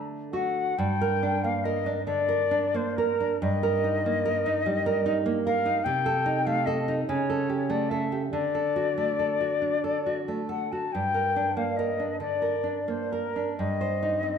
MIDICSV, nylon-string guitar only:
0, 0, Header, 1, 2, 480
1, 0, Start_track
1, 0, Key_signature, -2, "minor"
1, 0, Tempo, 930233
1, 401, Time_signature, 6, 3, 24, 8
1, 401, Tempo, 859599
1, 1361, Tempo, 910470
1, 1841, Tempo, 810811
1, 3761, Tempo, 831025
1, 4721, Tempo, 865801
1, 7121, Tempo, 931677
1, 7601, Tempo, 842697
1, 8061, End_track
2, 0, Start_track
2, 0, Title_t, "Nylon-string guitar"
2, 0, Program_c, 0, 24
2, 0, Note_on_c, 0, 50, 42
2, 0, Note_on_c, 0, 57, 39
2, 164, Note_off_c, 0, 57, 0
2, 169, Note_on_c, 0, 57, 32
2, 172, Note_on_c, 0, 66, 38
2, 383, Note_off_c, 0, 50, 0
2, 383, Note_off_c, 0, 57, 0
2, 384, Note_off_c, 0, 66, 0
2, 405, Note_on_c, 0, 43, 59
2, 533, Note_on_c, 0, 70, 49
2, 651, Note_on_c, 0, 62, 48
2, 719, Note_off_c, 0, 70, 0
2, 773, Note_on_c, 0, 58, 46
2, 837, Note_off_c, 0, 62, 0
2, 890, Note_on_c, 0, 70, 51
2, 955, Note_off_c, 0, 58, 0
2, 1006, Note_on_c, 0, 62, 46
2, 1073, Note_off_c, 0, 70, 0
2, 1122, Note_on_c, 0, 50, 44
2, 1191, Note_off_c, 0, 62, 0
2, 1243, Note_on_c, 0, 70, 48
2, 1314, Note_off_c, 0, 50, 0
2, 1369, Note_on_c, 0, 62, 53
2, 1437, Note_off_c, 0, 70, 0
2, 1491, Note_on_c, 0, 58, 51
2, 1559, Note_off_c, 0, 62, 0
2, 1616, Note_on_c, 0, 70, 52
2, 1682, Note_off_c, 0, 58, 0
2, 1734, Note_on_c, 0, 62, 49
2, 1801, Note_off_c, 0, 70, 0
2, 1821, Note_off_c, 0, 43, 0
2, 1846, Note_off_c, 0, 62, 0
2, 1848, Note_on_c, 0, 43, 61
2, 1974, Note_on_c, 0, 70, 55
2, 2098, Note_on_c, 0, 63, 52
2, 2165, Note_off_c, 0, 70, 0
2, 2227, Note_on_c, 0, 58, 50
2, 2285, Note_off_c, 0, 63, 0
2, 2343, Note_on_c, 0, 70, 55
2, 2409, Note_off_c, 0, 58, 0
2, 2464, Note_on_c, 0, 63, 52
2, 2527, Note_off_c, 0, 70, 0
2, 2583, Note_on_c, 0, 55, 54
2, 2647, Note_off_c, 0, 63, 0
2, 2702, Note_on_c, 0, 70, 61
2, 2766, Note_off_c, 0, 55, 0
2, 2818, Note_on_c, 0, 63, 60
2, 2885, Note_off_c, 0, 70, 0
2, 2936, Note_on_c, 0, 58, 56
2, 3002, Note_off_c, 0, 63, 0
2, 3060, Note_on_c, 0, 70, 64
2, 3118, Note_off_c, 0, 58, 0
2, 3173, Note_on_c, 0, 63, 51
2, 3240, Note_off_c, 0, 70, 0
2, 3258, Note_off_c, 0, 43, 0
2, 3284, Note_off_c, 0, 63, 0
2, 3291, Note_on_c, 0, 48, 62
2, 3410, Note_on_c, 0, 69, 54
2, 3528, Note_on_c, 0, 63, 55
2, 3597, Note_off_c, 0, 69, 0
2, 3652, Note_on_c, 0, 57, 50
2, 3718, Note_off_c, 0, 63, 0
2, 3772, Note_on_c, 0, 69, 57
2, 3839, Note_off_c, 0, 57, 0
2, 3894, Note_on_c, 0, 63, 52
2, 3956, Note_off_c, 0, 69, 0
2, 3984, Note_off_c, 0, 48, 0
2, 4005, Note_off_c, 0, 63, 0
2, 4014, Note_on_c, 0, 49, 64
2, 4134, Note_on_c, 0, 69, 44
2, 4249, Note_on_c, 0, 67, 47
2, 4316, Note_off_c, 0, 69, 0
2, 4365, Note_on_c, 0, 57, 49
2, 4434, Note_off_c, 0, 67, 0
2, 4489, Note_on_c, 0, 69, 46
2, 4554, Note_off_c, 0, 57, 0
2, 4610, Note_on_c, 0, 67, 38
2, 4678, Note_off_c, 0, 69, 0
2, 4707, Note_off_c, 0, 49, 0
2, 4727, Note_off_c, 0, 67, 0
2, 4730, Note_on_c, 0, 50, 48
2, 4851, Note_on_c, 0, 69, 42
2, 4969, Note_on_c, 0, 66, 44
2, 5036, Note_off_c, 0, 69, 0
2, 5089, Note_on_c, 0, 57, 38
2, 5155, Note_off_c, 0, 66, 0
2, 5209, Note_on_c, 0, 69, 39
2, 5276, Note_off_c, 0, 57, 0
2, 5326, Note_on_c, 0, 66, 36
2, 5397, Note_off_c, 0, 69, 0
2, 5445, Note_on_c, 0, 62, 38
2, 5517, Note_off_c, 0, 66, 0
2, 5568, Note_on_c, 0, 69, 37
2, 5637, Note_off_c, 0, 62, 0
2, 5692, Note_on_c, 0, 66, 38
2, 5760, Note_off_c, 0, 69, 0
2, 5813, Note_on_c, 0, 57, 36
2, 5884, Note_off_c, 0, 66, 0
2, 5928, Note_on_c, 0, 69, 41
2, 6005, Note_off_c, 0, 57, 0
2, 6058, Note_on_c, 0, 66, 36
2, 6122, Note_off_c, 0, 69, 0
2, 6152, Note_off_c, 0, 50, 0
2, 6174, Note_off_c, 0, 66, 0
2, 6181, Note_on_c, 0, 43, 49
2, 6291, Note_on_c, 0, 70, 40
2, 6412, Note_on_c, 0, 62, 44
2, 6476, Note_off_c, 0, 70, 0
2, 6525, Note_on_c, 0, 58, 38
2, 6594, Note_off_c, 0, 62, 0
2, 6648, Note_on_c, 0, 70, 44
2, 6708, Note_off_c, 0, 58, 0
2, 6763, Note_on_c, 0, 62, 35
2, 6829, Note_off_c, 0, 70, 0
2, 6876, Note_on_c, 0, 50, 38
2, 6949, Note_off_c, 0, 62, 0
2, 6998, Note_on_c, 0, 70, 36
2, 7071, Note_off_c, 0, 50, 0
2, 7118, Note_on_c, 0, 62, 38
2, 7194, Note_off_c, 0, 70, 0
2, 7243, Note_on_c, 0, 58, 39
2, 7313, Note_off_c, 0, 62, 0
2, 7370, Note_on_c, 0, 70, 44
2, 7437, Note_off_c, 0, 58, 0
2, 7491, Note_on_c, 0, 62, 35
2, 7557, Note_off_c, 0, 70, 0
2, 7584, Note_off_c, 0, 43, 0
2, 7603, Note_off_c, 0, 62, 0
2, 7611, Note_on_c, 0, 43, 45
2, 7735, Note_on_c, 0, 72, 38
2, 7858, Note_on_c, 0, 63, 40
2, 7920, Note_off_c, 0, 72, 0
2, 7975, Note_on_c, 0, 60, 38
2, 8039, Note_off_c, 0, 63, 0
2, 8061, Note_off_c, 0, 43, 0
2, 8061, Note_off_c, 0, 60, 0
2, 8061, End_track
0, 0, End_of_file